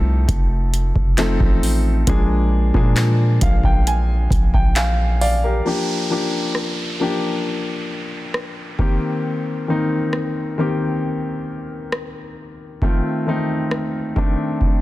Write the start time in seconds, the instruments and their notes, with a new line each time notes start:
Already playing: 808-style bass C2, grand piano F3 A3 C4 D#4 G4 A4
0.28 808-style bass F1, kick, closed hi-hat
0.74 closed hi-hat
0.96 808-style bass F1, kick
1.17 grand piano F3 A3 C4 D#4 A4, clap, closed hi-hat
1.40 808-style bass A1, kick
1.63 open hi-hat
2.07 808-style bass A#1, grand piano F3 G#3 A#3 D4 G#4, kick, closed hi-hat
2.74 808-style bass A#2, grand piano F3 G#3 A#3 D4 G#4, kick
2.96 clap, closed hi-hat
3.41 808-style bass A#1, grand piano F5, kick, closed hi-hat
3.64 grand piano G5, kick
3.87 grand piano G#5, closed hi-hat
4.31 808-style bass A#1, kick, closed hi-hat
4.54 grand piano G5, kick
4.76 grand piano F5 G#5, clap, closed hi-hat
5.21 grand piano D5 F5, open hi-hat
5.44 grand piano G4 A#4
5.65 grand piano F3 A#3 D4 G4, downlifter
6.10 grand piano F3 A#3 D4 G4
6.55 cross-stick
7.00 grand piano F3 A#3 D4 G4
8.34 cross-stick
8.79 grand piano D#3 A#3 C4 G4, kick
9.68 grand piano D#3 A#3 C4 D#4
10.13 cross-stick
10.58 grand piano D#3 A#3 C4 G4
11.92 cross-stick
12.82 grand piano D#3 A3 C4 F4, kick
13.26 grand piano D#3 A3 C4 D#4
13.71 cross-stick
14.16 grand piano D#3 A3 C4 D4, kick
14.61 kick